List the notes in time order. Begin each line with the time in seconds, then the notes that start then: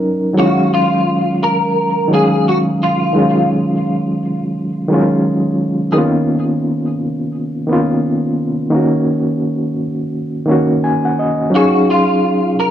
Already playing: F#3 C#4 D#4 A#4
0.33 D#3 F#3 G#3
0.38 C#4 E4 F#4
0.46 F5
0.74 F4
1.43 A#4
2.08 D#3 F#3 G#3
2.13 C#4 G#4 F5
2.48 F#4
2.83 F4
3.13 D#3 F#3 G#3
3.17 C#4 F4
4.88 D#3 F#3 G#3
4.93 C#4 F4
5.92 D#3 A#3 B3 G#4
5.97 C#4 F4
7.67 D#3 A#3 B3
7.71 C#4 F4
8.70 D#3 A#3 C#4
8.76 F#4
10.45 D#3 A#3
10.49 C#4 F#4
10.84 G#5
11.05 F#5
11.19 D#5
11.50 F#3 C#4 D#4
11.55 F#4 G#4 F5
11.90 F4
12.60 A#4